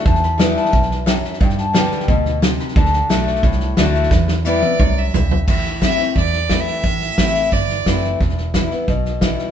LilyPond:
<<
  \new Staff \with { instrumentName = "Harp" } { \time 4/4 \key a \dorian \tempo 4 = 177 a''8 b''4 a''4. g''8 e''8 | g''8 a''8 g''4 b''4. b''8 | a''8 fis''8 e''8 d''4 r8 fis''8 e''8~ | e''2. r4 |
r1 | r1 | r1 | }
  \new Staff \with { instrumentName = "Fiddle" } { \time 4/4 \key a \dorian r1 | r1 | r1 | r4 d''4. e''4~ e''16 r16 |
e''4 e''4 d''4~ \tuplet 3/2 { d''8 e''4~ } | e''2 d''4. r8 | r1 | }
  \new Staff \with { instrumentName = "Steel-string acoustic guitar" } { \time 4/4 \key a \dorian << { r4 <e g b e'>4 r2 | r4 <d g b g'>4 r2 | r4 <d a d' fis'>4 r4 <d a d' fis'>4 | r4 <e g b e'>8 <b e'>8 r2 |
r4 <e a c' e'>8 <c' e'>8 r4 <e a c' e'>4 | r4 <e a c' e'>4 r4 <e a c' e'>4 | r4 <e g b e'>8 <b e'>8 r4 <e g b e'>4 | } \\ { e,2 e,4 fis,4 | g,2 b,4 c4 | d2 a,2 | e,2 fis,4 g,4 |
a,2 e,2 | a,2 e,2 | e,2 b,2 | } >> }
  \new Staff \with { instrumentName = "Fingered electric bass" } { \clef bass \time 4/4 \key a \dorian e,2 b,,2 | g,2 d,2 | d,4 b,,4 c,4 d,4 | e,2 c,4 b,,4 |
a,,2 e,2 | a,,4 a,,4 g,,4 fis,,4 | e,,2 b,,2 | }
  \new DrumStaff \with { instrumentName = "Drums" } \drummode { \time 4/4 <bd sn>16 sn16 sn8 <hhp sn>8 sn16 sn16 <bd sn>16 sn16 sn8 <hhp sn>8 sn16 sn16 | <bd sn>16 sn16 sn8 <hhp sn>8 sn16 sn16 <bd sn>8 sn8 <hhp sn>8 sn16 sn16 | <bd sn>16 sn16 sn8 <hhp sn>8 sn16 sn16 <bd sn>16 sn16 sn8 <hhp sn>8 sn16 sn16 | <bd sn>8 sn8 hhp8 tommh8 <bd toml>4 <hhp tomfh>8 tomfh8 |
<cymc bd sn>16 sn16 sn8 <hhp bd sn>8 sn8 <bd sn>8 sn8 <hhp bd sn>8 sn8 | <bd sn>8 sn8 <hhp bd sn>8 sn8 <bd sn>8 sn8 <hhp bd sn>8 sn8 | <bd sn>16 sn16 sn8 <hhp bd sn>8 sn8 <bd sn>8 sn8 <hhp bd sn>8 sn8 | }
>>